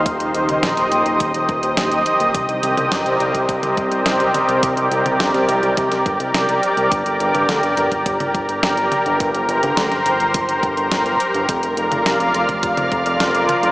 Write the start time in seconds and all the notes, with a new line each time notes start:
Already playing: D#3 D#4 G4 C5
0.06 D#1 D#5, kick, closed hi-hat
0.20 D#1, closed hi-hat
0.34 D#1, closed hi-hat
0.49 D#1, closed hi-hat, mid tom
0.63 A#1, snare, closed hi-hat
0.77 D#1, snare, closed hi-hat
0.92 D#1, closed hi-hat
1.06 D#1, closed hi-hat
1.20 D#1, kick, closed hi-hat
1.34 D#1, closed hi-hat
1.49 D#1, kick, closed hi-hat
1.63 D#1, closed hi-hat
1.77 D#1, snare, closed hi-hat
1.92 D#1, closed hi-hat
2.06 closed hi-hat
2.20 D#1, closed hi-hat
2.34 C2 C4 A#4 D5, kick, closed hi-hat
2.49 C2, closed hi-hat
2.63 C2, closed hi-hat
2.77 C2, closed hi-hat, mid tom
2.92 G1, snare, closed hi-hat
3.06 C2, closed hi-hat
3.20 C2, closed hi-hat
3.34 C2, kick, closed hi-hat
3.49 C2, kick, closed hi-hat
3.63 C2, closed hi-hat, mid tom
3.77 C2, kick, closed hi-hat
3.91 C2, closed hi-hat
4.06 C2, snare, closed hi-hat
4.20 C2, closed hi-hat
4.34 closed hi-hat, mid tom
4.48 C2, closed hi-hat
4.63 C2, kick, closed hi-hat
4.77 C2, closed hi-hat
4.91 C2, closed hi-hat
5.06 C2, closed hi-hat, mid tom
5.20 G1, snare, closed hi-hat
5.34 C2, snare, closed hi-hat
5.49 C2, closed hi-hat
5.63 C2, closed hi-hat
5.77 C2, kick, closed hi-hat
5.91 C2, snare, closed hi-hat
6.06 G1, kick, closed hi-hat
6.20 C2, closed hi-hat
6.34 C2, snare, closed hi-hat
6.49 C2, closed hi-hat
6.63 closed hi-hat
6.77 C2, closed hi-hat
6.92 G1, kick, closed hi-hat
7.06 G1, closed hi-hat
7.20 G1, closed hi-hat
7.34 G1, closed hi-hat, mid tom
7.49 D2, snare, closed hi-hat
7.63 G1, closed hi-hat
7.77 G1, closed hi-hat
7.92 G1, kick, closed hi-hat
8.06 G1, kick, closed hi-hat
8.20 G1, closed hi-hat, mid tom
8.35 G1, kick, closed hi-hat
8.49 G1, closed hi-hat
8.63 G1, snare, closed hi-hat
8.77 G1, closed hi-hat
8.92 closed hi-hat, mid tom
9.06 G1, closed hi-hat
9.20 G1 C5, kick, closed hi-hat
9.35 G1, closed hi-hat
9.49 G1, closed hi-hat
9.63 G1, closed hi-hat, mid tom
9.77 D2, snare, closed hi-hat
9.92 G1, snare, closed hi-hat
10.06 G1, closed hi-hat
10.20 G1, closed hi-hat
10.34 G1, kick, closed hi-hat
10.49 G1, closed hi-hat
10.63 G1, kick, closed hi-hat
10.77 G1, closed hi-hat
10.91 G1, snare, closed hi-hat
11.06 G1, closed hi-hat
11.20 closed hi-hat
11.34 G1, closed hi-hat
11.49 F1 F3 F4 D5 F5, kick, closed hi-hat
11.63 F1, closed hi-hat
11.77 F1, closed hi-hat
11.91 F1, closed hi-hat, mid tom
12.06 C2, snare, closed hi-hat
12.20 F1, closed hi-hat
12.34 F1, closed hi-hat
12.49 F1, kick, closed hi-hat
12.63 F1, kick, closed hi-hat
12.77 F1, closed hi-hat, mid tom
12.92 F1, kick, closed hi-hat
13.06 F1, closed hi-hat
13.20 F1, snare, closed hi-hat
13.34 F1, closed hi-hat
13.49 closed hi-hat, mid tom
13.63 F1, closed hi-hat